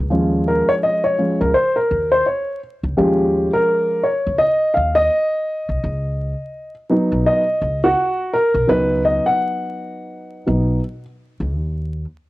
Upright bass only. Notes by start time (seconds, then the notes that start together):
Already playing: C#2
0.12 D#2
1.41 C#2
1.91 D#2
2.83 C#2
2.98 D#2
4.27 C#2
4.77 D#2
5.69 C2
5.84 C#2
7.12 B1
7.61 C#2
8.54 B1
8.69 C#2
10.47 B1
11.40 C#2
11.55 D#2